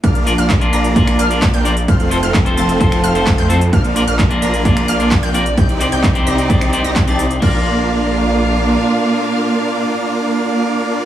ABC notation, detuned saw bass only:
X:1
M:4/4
L:1/16
Q:1/4=130
K:Bb
V:1 name="Detuned saw bass" clef=bass
B,,,3 B,,,3 B,,,4 B,,,3 B,,,3 | F,,,3 F,,,3 F,,,4 F,,,3 F,,3 | B,,,3 B,,,3 B,,,4 B,,,3 B,,,3 | C,,3 C,,3 C,,4- C,, C,,2 C,,3 |
B,,,12 z4 | z16 |]